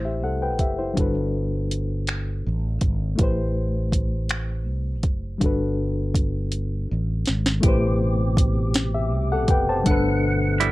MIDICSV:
0, 0, Header, 1, 6, 480
1, 0, Start_track
1, 0, Tempo, 740741
1, 627, Time_signature, 6, 3, 24, 8
1, 6946, End_track
2, 0, Start_track
2, 0, Title_t, "Reed electric piano"
2, 0, Program_c, 0, 4
2, 0, Control_c, 0, 64, 127
2, 0, Note_on_c, 0, 57, 63
2, 0, Note_on_c, 0, 64, 47
2, 0, Note_on_c, 0, 67, 50
2, 0, Note_on_c, 0, 71, 55
2, 0, Note_on_c, 0, 72, 55
2, 32, Note_on_c, 0, 76, 47
2, 36, Note_off_c, 0, 67, 0
2, 36, Note_on_c, 0, 67, 45
2, 144, Note_off_c, 0, 76, 0
2, 146, Note_off_c, 0, 67, 0
2, 153, Note_on_c, 0, 78, 62
2, 157, Note_on_c, 0, 69, 50
2, 264, Note_off_c, 0, 78, 0
2, 267, Note_off_c, 0, 69, 0
2, 274, Note_on_c, 0, 79, 57
2, 278, Note_off_c, 0, 71, 0
2, 278, Note_on_c, 0, 71, 51
2, 385, Note_off_c, 0, 79, 0
2, 387, Note_off_c, 0, 71, 0
2, 392, Note_on_c, 0, 76, 51
2, 396, Note_on_c, 0, 67, 42
2, 504, Note_off_c, 0, 76, 0
2, 506, Note_off_c, 0, 67, 0
2, 509, Note_off_c, 0, 72, 0
2, 509, Note_on_c, 0, 72, 48
2, 513, Note_off_c, 0, 64, 0
2, 513, Note_on_c, 0, 64, 45
2, 593, Note_off_c, 0, 57, 0
2, 605, Note_on_c, 0, 55, 58
2, 617, Note_on_c, 0, 62, 51
2, 630, Note_on_c, 0, 66, 57
2, 637, Control_c, 0, 64, 0
2, 642, Note_on_c, 0, 69, 51
2, 652, Note_on_c, 0, 71, 66
2, 736, Note_off_c, 0, 72, 0
2, 738, Note_off_c, 0, 64, 0
2, 757, Control_c, 0, 64, 127
2, 2030, Note_off_c, 0, 55, 0
2, 2036, Note_off_c, 0, 62, 0
2, 2043, Note_off_c, 0, 66, 0
2, 2046, Note_on_c, 0, 57, 61
2, 2049, Note_off_c, 0, 69, 0
2, 2054, Note_off_c, 0, 71, 0
2, 2058, Note_on_c, 0, 64, 63
2, 2069, Note_on_c, 0, 67, 55
2, 2077, Control_c, 0, 64, 0
2, 2081, Note_on_c, 0, 71, 61
2, 2096, Note_on_c, 0, 72, 74
2, 2174, Control_c, 0, 64, 127
2, 3470, Note_off_c, 0, 57, 0
2, 3477, Note_off_c, 0, 64, 0
2, 3482, Note_off_c, 0, 67, 0
2, 3488, Note_off_c, 0, 71, 0
2, 3488, Note_on_c, 0, 55, 58
2, 3496, Note_off_c, 0, 72, 0
2, 3501, Note_on_c, 0, 62, 59
2, 3512, Note_on_c, 0, 66, 56
2, 3515, Control_c, 0, 64, 0
2, 3525, Note_on_c, 0, 69, 58
2, 3537, Note_on_c, 0, 71, 69
2, 3624, Control_c, 0, 64, 127
2, 4912, Note_off_c, 0, 55, 0
2, 4918, Note_off_c, 0, 62, 0
2, 4924, Note_off_c, 0, 66, 0
2, 4929, Note_on_c, 0, 57, 77
2, 4930, Note_off_c, 0, 69, 0
2, 4936, Note_off_c, 0, 71, 0
2, 4940, Note_on_c, 0, 64, 69
2, 4953, Note_on_c, 0, 67, 71
2, 4956, Control_c, 0, 64, 0
2, 4965, Note_on_c, 0, 71, 66
2, 4978, Note_on_c, 0, 72, 81
2, 5071, Control_c, 0, 64, 127
2, 5656, Note_off_c, 0, 67, 0
2, 5662, Note_off_c, 0, 71, 0
2, 5669, Note_off_c, 0, 72, 0
2, 5796, Note_on_c, 0, 76, 62
2, 5800, Note_on_c, 0, 67, 50
2, 6020, Note_off_c, 0, 76, 0
2, 6022, Note_off_c, 0, 67, 0
2, 6039, Note_on_c, 0, 78, 77
2, 6044, Note_on_c, 0, 69, 67
2, 6148, Note_off_c, 0, 78, 0
2, 6150, Note_off_c, 0, 69, 0
2, 6159, Note_on_c, 0, 79, 73
2, 6163, Note_on_c, 0, 71, 55
2, 6268, Note_off_c, 0, 79, 0
2, 6270, Note_off_c, 0, 71, 0
2, 6280, Note_on_c, 0, 81, 66
2, 6283, Note_on_c, 0, 72, 54
2, 6352, Note_off_c, 0, 57, 0
2, 6358, Note_off_c, 0, 64, 0
2, 6373, Note_on_c, 0, 55, 72
2, 6387, Note_on_c, 0, 62, 70
2, 6395, Control_c, 0, 64, 0
2, 6398, Note_on_c, 0, 78, 65
2, 6411, Note_on_c, 0, 69, 68
2, 6422, Note_on_c, 0, 71, 85
2, 6498, Control_c, 0, 64, 127
2, 6502, Note_off_c, 0, 81, 0
2, 6504, Note_off_c, 0, 72, 0
2, 6946, Note_off_c, 0, 55, 0
2, 6946, Note_off_c, 0, 62, 0
2, 6946, Note_off_c, 0, 69, 0
2, 6946, Note_off_c, 0, 71, 0
2, 6946, Note_off_c, 0, 78, 0
2, 6946, End_track
3, 0, Start_track
3, 0, Title_t, "Clean electric guitar"
3, 0, Program_c, 1, 27
3, 6870, Note_on_c, 1, 64, 66
3, 6873, Note_on_c, 1, 55, 59
3, 6946, Note_off_c, 1, 55, 0
3, 6946, Note_off_c, 1, 64, 0
3, 6946, End_track
4, 0, Start_track
4, 0, Title_t, "Tonewheel organ"
4, 0, Program_c, 2, 16
4, 4944, Note_on_c, 2, 47, 65
4, 4945, Note_on_c, 2, 67, 70
4, 4947, Note_on_c, 2, 48, 68
4, 6371, Note_off_c, 2, 47, 0
4, 6372, Note_off_c, 2, 48, 0
4, 6372, Note_off_c, 2, 67, 0
4, 6389, Note_on_c, 2, 47, 71
4, 6390, Note_on_c, 2, 57, 61
4, 6393, Note_on_c, 2, 78, 74
4, 6946, Note_off_c, 2, 47, 0
4, 6946, Note_off_c, 2, 57, 0
4, 6946, Note_off_c, 2, 78, 0
4, 6946, End_track
5, 0, Start_track
5, 0, Title_t, "Fretless electric bass"
5, 0, Program_c, 3, 35
5, 0, Note_on_c, 3, 33, 71
5, 158, Note_off_c, 3, 33, 0
5, 158, Note_on_c, 3, 36, 73
5, 388, Note_off_c, 3, 36, 0
5, 388, Note_on_c, 3, 30, 76
5, 604, Note_off_c, 3, 30, 0
5, 634, Note_on_c, 3, 31, 74
5, 1565, Note_off_c, 3, 31, 0
5, 1597, Note_on_c, 3, 33, 75
5, 1809, Note_off_c, 3, 33, 0
5, 1829, Note_on_c, 3, 32, 69
5, 2044, Note_off_c, 3, 32, 0
5, 2072, Note_on_c, 3, 33, 80
5, 3040, Note_off_c, 3, 33, 0
5, 3040, Note_on_c, 3, 36, 77
5, 3268, Note_off_c, 3, 36, 0
5, 3268, Note_on_c, 3, 30, 77
5, 3484, Note_off_c, 3, 30, 0
5, 3513, Note_on_c, 3, 31, 77
5, 4444, Note_off_c, 3, 31, 0
5, 4480, Note_on_c, 3, 33, 77
5, 4690, Note_off_c, 3, 33, 0
5, 4723, Note_on_c, 3, 32, 72
5, 4932, Note_off_c, 3, 32, 0
5, 4952, Note_on_c, 3, 33, 89
5, 5923, Note_off_c, 3, 33, 0
5, 5923, Note_on_c, 3, 36, 90
5, 6151, Note_off_c, 3, 36, 0
5, 6151, Note_on_c, 3, 30, 95
5, 6365, Note_off_c, 3, 30, 0
5, 6395, Note_on_c, 3, 31, 92
5, 6946, Note_off_c, 3, 31, 0
5, 6946, End_track
6, 0, Start_track
6, 0, Title_t, "Drums"
6, 382, Note_on_c, 9, 42, 45
6, 384, Note_on_c, 9, 36, 62
6, 447, Note_off_c, 9, 42, 0
6, 448, Note_off_c, 9, 36, 0
6, 629, Note_on_c, 9, 36, 88
6, 630, Note_on_c, 9, 42, 69
6, 693, Note_off_c, 9, 36, 0
6, 695, Note_off_c, 9, 42, 0
6, 1110, Note_on_c, 9, 42, 62
6, 1175, Note_off_c, 9, 42, 0
6, 1343, Note_on_c, 9, 42, 55
6, 1352, Note_on_c, 9, 26, 92
6, 1408, Note_off_c, 9, 42, 0
6, 1416, Note_off_c, 9, 26, 0
6, 1821, Note_on_c, 9, 42, 42
6, 1823, Note_on_c, 9, 36, 73
6, 1886, Note_off_c, 9, 42, 0
6, 1888, Note_off_c, 9, 36, 0
6, 2065, Note_on_c, 9, 42, 63
6, 2067, Note_on_c, 9, 36, 104
6, 2130, Note_off_c, 9, 42, 0
6, 2132, Note_off_c, 9, 36, 0
6, 2543, Note_on_c, 9, 36, 69
6, 2548, Note_on_c, 9, 42, 64
6, 2607, Note_off_c, 9, 36, 0
6, 2613, Note_off_c, 9, 42, 0
6, 2782, Note_on_c, 9, 42, 60
6, 2791, Note_on_c, 9, 26, 88
6, 2847, Note_off_c, 9, 42, 0
6, 2855, Note_off_c, 9, 26, 0
6, 3260, Note_on_c, 9, 42, 45
6, 3262, Note_on_c, 9, 36, 75
6, 3325, Note_off_c, 9, 42, 0
6, 3327, Note_off_c, 9, 36, 0
6, 3506, Note_on_c, 9, 36, 99
6, 3508, Note_on_c, 9, 42, 65
6, 3571, Note_off_c, 9, 36, 0
6, 3572, Note_off_c, 9, 42, 0
6, 3982, Note_on_c, 9, 36, 76
6, 3988, Note_on_c, 9, 42, 66
6, 4047, Note_off_c, 9, 36, 0
6, 4053, Note_off_c, 9, 42, 0
6, 4223, Note_on_c, 9, 42, 56
6, 4288, Note_off_c, 9, 42, 0
6, 4702, Note_on_c, 9, 42, 45
6, 4713, Note_on_c, 9, 38, 71
6, 4766, Note_off_c, 9, 42, 0
6, 4778, Note_off_c, 9, 38, 0
6, 4834, Note_on_c, 9, 38, 74
6, 4899, Note_off_c, 9, 38, 0
6, 4945, Note_on_c, 9, 42, 74
6, 4947, Note_on_c, 9, 36, 112
6, 5010, Note_off_c, 9, 42, 0
6, 5012, Note_off_c, 9, 36, 0
6, 5424, Note_on_c, 9, 36, 91
6, 5432, Note_on_c, 9, 42, 78
6, 5489, Note_off_c, 9, 36, 0
6, 5497, Note_off_c, 9, 42, 0
6, 5665, Note_on_c, 9, 42, 68
6, 5674, Note_on_c, 9, 38, 124
6, 5730, Note_off_c, 9, 42, 0
6, 5738, Note_off_c, 9, 38, 0
6, 6143, Note_on_c, 9, 42, 52
6, 6144, Note_on_c, 9, 36, 82
6, 6208, Note_off_c, 9, 42, 0
6, 6209, Note_off_c, 9, 36, 0
6, 6389, Note_on_c, 9, 36, 116
6, 6389, Note_on_c, 9, 42, 81
6, 6453, Note_off_c, 9, 42, 0
6, 6454, Note_off_c, 9, 36, 0
6, 6873, Note_on_c, 9, 42, 84
6, 6937, Note_off_c, 9, 42, 0
6, 6946, End_track
0, 0, End_of_file